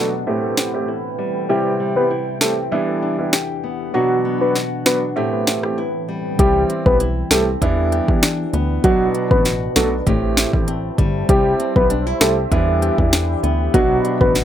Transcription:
Already playing: B2 F#3 B3 D4 F#4 B4 F#5, downlifter
0.27 A2 A3 C4 E4 G4 G5
0.57 C4, snare
0.74 A3 C4 E4 G4
0.88 E4
1.19 G3
1.49 C3 G3 C4 E4 G4
1.80 G3
1.96 G3 C4 E4 G4 B4
2.11 E4
2.41 G3 C4 E4 G4 A4, snare
2.71 E3 G3 B3 D4 E4 F#5
3.02 D4
3.18 G3 B3 D4 E4
3.33 G4, snare
3.64 B3
3.94 B2 F#3 B3 D4 F#4 B4
4.25 B3
4.41 F#3 B3 D4 F#4 B4
4.55 F#4, snare
4.86 F#3 B3 D4 F#4 B4, snare
5.16 A2 A3 C4 E4 G4
5.47 C4, snare
5.63 A3 C4 E4 G4, cross-stick
5.78 E4
6.09 G3
6.39 C2 G3 C4 E4 G4, kick, closed hi-hat
6.70 C4, closed hi-hat
6.86 B1 G3 C4 E4 G4 B4, kick
7.00 E4, closed hi-hat
7.31 C2 G3 C4 E4 G4 A4, snare, closed hi-hat
7.61 E2 E3 G3 B3 D4 E4 B4, kick, closed hi-hat
7.92 G4, closed hi-hat
8.08 E2 G3 B3 D4 E4, kick
8.23 D4, snare, closed hi-hat
8.53 D2 B3, closed hi-hat
8.84 B1 B2 F#3 B3 D4 F#4, kick, closed hi-hat
9.15 D4, closed hi-hat
9.31 A1 F#3 B3 D4 F#4 B4, kick
9.45 F#4, snare, closed hi-hat
9.76 B1 F#3 B3 D4 F#4 A4, snare, closed hi-hat
10.06 A1 A2 A3 C4 E4 G4 C5 E5, kick, closed hi-hat
10.37 E4, snare, closed hi-hat
10.53 A1 A3 C4 E4 G4, kick
10.68 C4, closed hi-hat
10.98 G1 G3, kick, closed hi-hat
11.29 C2 G3 C4 E4 G4, kick, closed hi-hat
11.60 C4, closed hi-hat
11.76 B1 G3 C4 E4 G4 B4, kick
11.90 D4, closed hi-hat
12.07 E4
12.20 C2 G3 C4 E4 G4 A4, snare, closed hi-hat
12.51 E2 E3 G3 B3 D4 E4 D5 B5, kick, closed hi-hat
12.82 G4, closed hi-hat
12.98 E2 G3 B3 D4 E4, kick
13.13 D4, snare, closed hi-hat
13.43 D2 B3, closed hi-hat
13.74 B1 B2 F#3 B3 D4 F#4, kick, closed hi-hat
14.05 D4, closed hi-hat
14.21 A1 F#3 B3 D4 F#4 B4, kick
14.35 F#4, snare, closed hi-hat

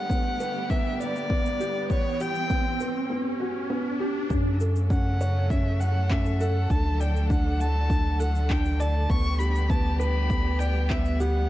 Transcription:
Already playing: D3 G3 B3 G4 F#5, riser
0.10 B3, kick, shaker
0.40 B4, shaker
0.70 B3 E5, kick, shaker
1.00 D5, shaker
1.16 shaker
1.30 B3, kick
1.46 shaker
1.60 G4, shaker
1.90 E3 B3 C#5 G5, kick, shaker
2.20 G4 G5, shaker
2.35 shaker
2.50 B3, kick, shaker
2.80 B4, shaker
3.10 B3
3.40 F#4
3.70 B3
4.00 G4
4.30 F#2 C#3 F#3 A3 C#4 A4, kick, shaker
4.60 A4, shaker
4.76 shaker
4.90 C#4 F#5, kick, shaker
5.21 C#5, shaker
5.50 C#4 E5, kick, shaker
5.80 F#5, shaker
6.10 C#4 E5, kick, clap
6.26 shaker
6.40 A4 F#5, shaker
6.70 D2 D3 A3 D4 A5, kick, shaker
7.00 D5 G5, shaker
7.16 shaker
7.30 D4 F#5, kick, shaker
7.60 F#5 A5, shaker
7.90 D4, kick, shaker
8.20 A4 F#5, shaker
8.35 shaker
8.50 D4 G5, kick, clap
8.65 shaker
8.80 D5 A5, shaker
9.10 D2 G3 B3 G4 C#6, kick, shaker
9.39 G4 B5, shaker
9.55 shaker
9.69 B3 A5, kick, shaker
9.99 B4 B5, shaker
10.30 B3, kick, shaker
10.59 D5 G5, shaker
10.89 B3 E5, kick, clap
11.05 shaker
11.20 G4 F#5, shaker

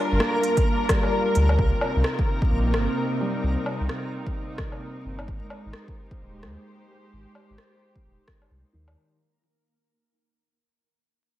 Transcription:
Already playing: G3 A#3 D4 F4 A#4
0.12 G1
0.20 A#3, cross-stick
0.43 closed hi-hat
0.57 kick, closed hi-hat
0.89 G3, kick, cross-stick, closed hi-hat
1.03 low woodblock
1.35 D2, closed hi-hat
1.49 low woodblock
1.57 C2 C3, kick
1.68 C4
1.81 D#4, low woodblock
1.96 C2
2.04 cross-stick
2.19 kick
2.42 kick
2.51 A#1
2.74 G1, cross-stick
3.20 G3
3.43 C2
3.66 low woodblock
3.80 C2
3.89 cross-stick
4.27 kick
4.58 kick, cross-stick
4.72 low woodblock
5.05 G1
5.19 low woodblock
5.28 G#1 G#3, kick
5.50 low woodblock
5.65 G#1 C5
5.73 G4, cross-stick
5.88 kick
6.11 kick
6.21 D#1
6.43 D#2 G#3, cross-stick
7.13 G#1
7.35 low woodblock
7.50 G#1
7.58 cross-stick
7.96 kick
8.05 D#1
8.28 kick, cross-stick
8.42 low woodblock
8.51 C2
8.73 D#2 D#3
8.88 low woodblock

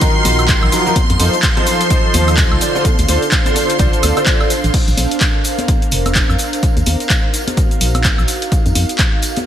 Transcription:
Already playing: F#3 D#4 A#4 F5 C6
0.01 D#3 D#4 F4 F#4 A#4, kick, closed hi-hat, tambourine, cabasa
0.25 A#1, open hi-hat, tambourine, high conga, cabasa
0.39 closed hi-hat, tambourine, cabasa, high woodblock
0.48 kick, clap, closed hi-hat, tambourine, cabasa
0.63 A#1, high woodblock
0.72 F3 D#4 F4 F#4 A#4, open hi-hat, tambourine, cabasa
0.86 F3 D#4 F4 F#4 A#4, tambourine, cabasa
0.96 kick, closed hi-hat, tambourine, high conga, cabasa
1.10 F2, closed hi-hat, tambourine
1.14 A4
1.20 F2 F3 D#4 F4 A4 C5, open hi-hat, tambourine, cabasa
1.33 closed hi-hat, tambourine, cabasa
1.43 kick, clap, closed hi-hat, tambourine, cabasa
1.57 F3 D#4 F4 A4 C5, closed hi-hat, high conga
1.66 F3 D#4 F4 A4 C5, open hi-hat, tambourine, cabasa
1.71 C5
1.81 closed hi-hat, tambourine, cabasa
1.90 F3 D#4 F4 A4 C5, kick, closed hi-hat, tambourine, cabasa
2.14 D#2, open hi-hat, tambourine, high conga, cabasa
2.27 closed hi-hat, tambourine, cabasa, high woodblock
2.37 kick, clap, closed hi-hat, tambourine, cabasa
2.52 C2, high woodblock
2.61 D3 D4 F4 A4 C5, open hi-hat, tambourine, cabasa
2.75 D3 D4 F4 A4 C5, tambourine, cabasa
2.85 kick, closed hi-hat, tambourine, high conga, cabasa
2.98 D2, closed hi-hat, tambourine, cabasa
3.08 D2 D3 D4 F4 A4 C5, open hi-hat, tambourine, cabasa
3.22 closed hi-hat, tambourine, cabasa
3.32 kick, clap, closed hi-hat, tambourine, cabasa
3.45 D3 D4 F4 A4 C5, closed hi-hat, high conga, cabasa
3.56 D3 D4 F4 A4 C5, open hi-hat, tambourine, cabasa
3.69 closed hi-hat, tambourine, cabasa
3.79 C2 D3 D4 F4 A4 C5, kick, closed hi-hat, tambourine, cabasa
3.93 closed hi-hat, tambourine, cabasa
4.03 D2, open hi-hat, tambourine, high conga, cabasa, high woodblock
4.17 D3 D4 F4 A4 C5, closed hi-hat, tambourine, cabasa, high woodblock
4.26 D3 D4 F4 A4 C5, kick, clap, closed hi-hat, tambourine, cabasa
4.40 D3 D4 F4 A4 C5, tambourine, high woodblock
4.50 open hi-hat, tambourine, cabasa
4.64 A1, closed hi-hat, tambourine, cabasa
4.74 kick, closed hi-hat, crash, tambourine, cabasa
4.81 A#4
4.88 A#1, closed hi-hat, tambourine, cabasa
4.97 A#1, open hi-hat, tambourine, high conga, cabasa
5.11 closed hi-hat, tambourine, cabasa
5.21 kick, clap, closed hi-hat, tambourine, cabasa
5.44 open hi-hat, tambourine, cabasa
5.58 closed hi-hat, tambourine, high conga, cabasa
5.68 kick, closed hi-hat, tambourine, cabasa
5.82 closed hi-hat, cabasa
5.91 F1, open hi-hat, tambourine, cabasa
6.06 closed hi-hat, tambourine, high conga, cabasa, high woodblock
6.15 kick, clap, closed hi-hat, tambourine, cabasa
6.29 F2, cabasa, high woodblock
6.38 open hi-hat, tambourine, cabasa
6.53 closed hi-hat, tambourine, cabasa
6.63 D#4, kick, closed hi-hat, tambourine, cabasa
6.77 D#2, closed hi-hat, tambourine, cabasa
6.86 D#2, open hi-hat, tambourine, high conga, cabasa
7.00 closed hi-hat, tambourine, cabasa
7.07 F#4, kick, clap, closed hi-hat, tambourine, cabasa
7.34 open hi-hat, tambourine, cabasa
7.47 closed hi-hat, tambourine, high conga, cabasa
7.57 kick, closed hi-hat, tambourine, cabasa
7.71 closed hi-hat, cabasa
7.81 A#1, open hi-hat, tambourine, cabasa
7.94 closed hi-hat, tambourine, high conga, cabasa, high woodblock
8.04 kick, clap, closed hi-hat, tambourine, cabasa
8.18 A#1, cabasa, high woodblock
8.28 open hi-hat, tambourine, cabasa
8.42 closed hi-hat, tambourine, cabasa
8.52 kick, closed hi-hat, tambourine, cabasa
8.66 F2, closed hi-hat, tambourine, cabasa
8.75 F2, open hi-hat, tambourine, high conga, cabasa
8.89 closed hi-hat, tambourine, cabasa
8.98 A4, kick, clap, closed hi-hat, tambourine, cabasa
9.22 open hi-hat, tambourine, cabasa
9.27 C5
9.36 closed hi-hat, tambourine, high conga, cabasa

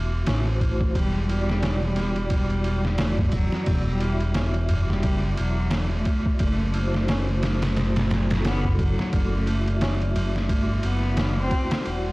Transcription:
Already playing: E1 A3 E4 F#4 E5
0.27 A1, snare, ride, tabla na
0.44 A3 E4 F#4 C5
0.61 kick, ride
0.81 kick
0.94 E1 G3 D5, kick, ride
1.25 G3 E4
1.29 F#4 D5, ride
1.49 snare
1.62 snare, ride, tabla na
1.83 G3
1.96 snare, ride
2.16 ride
2.30 G3, kick, ride
2.50 ride
2.64 ride
2.81 F#3 E4, snare
2.86 F#4 D5
2.98 A3, snare, ride, tabla na
3.18 kick, tabla ge
3.32 F#3, kick, ride
3.52 snare
3.66 E1, kick, ride
3.88 G3
3.98 B3 E4, ride
4.03 F#4 E5
4.21 ride
4.34 snare, ride, tabla na
4.54 ride
4.69 ride, tabla ge
4.90 G3, snare
5.03 F#1, kick, ride
5.37 E1 F#3, ride
5.71 snare, ride, tabla na
5.93 A3
6.05 kick, ride
6.26 kick
6.39 F#1 A3, kick, ride
6.72 A3 E4, ride
6.77 F#4 C5
6.94 snare
7.08 snare, ride, tabla na
7.27 A3
7.43 snare, ride
7.62 snare, ride
7.77 A3, snare, ride
7.96 snare, ride
8.11 snare, ride
8.28 A3 E4, snare, ride
8.36 A4
8.43 B3, snare, ride, tabla na
8.65 kick, tabla ge
8.79 F#3, kick, ride
8.99 snare
9.13 F#1, kick, ride
9.33 A3
9.44 A3 E4, ride
9.49 F#4 E5
9.68 ride
9.81 snare, ride, tabla na
10.02 ride
10.16 ride, tabla ge
10.35 A3, snare
10.49 G1, kick, ride
10.83 F#1 B3, ride
11.17 snare, ride, tabla na
11.37 A3 C4 E4 F#4 C5
11.51 kick, ride
11.71 snare, ride
11.83 E1 G3 E4 F#4 D5, ride
11.87 F#4

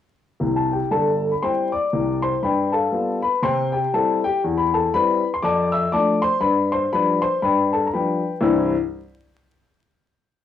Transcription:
0.40 C2 C3
0.56 A5
0.72 G4 G5
0.91 G1 G2 A4 A5
1.32 B5
1.42 G3 C4 E4 C5 G5 C6
1.72 D5 D6
1.93 C2 C3
2.22 C5 C6
2.42 G2 B4 G5 B5
2.72 A4 F5 A5
2.92 G3 B3 F4
3.22 B4 B5
3.42 C3 C5 G5 C6
3.72 G4 G5
3.94 G3 C4 E4 A4 A5
4.24 G4 G5
4.44 E2
4.58 B5
4.74 A4 A5
4.94 G3 C4 E4 B4 B5
5.34 C6
5.42 F2 D5 A5 D6
5.72 E5 E6
5.92 F3 A3 D4 D5 A5 D6
6.22 C5 C6
6.41 G2 B4 B5
6.72 C5 C6
6.93 F3 G3 D4 B4 B5
7.22 C5 C6
7.42 G2 B4 G5 B5
7.73 A4 A5
7.86 A#5
7.93 F3 G3 D4 B4 G5 B5
8.41 C2 G2 E3 G3 C4 E4 E6

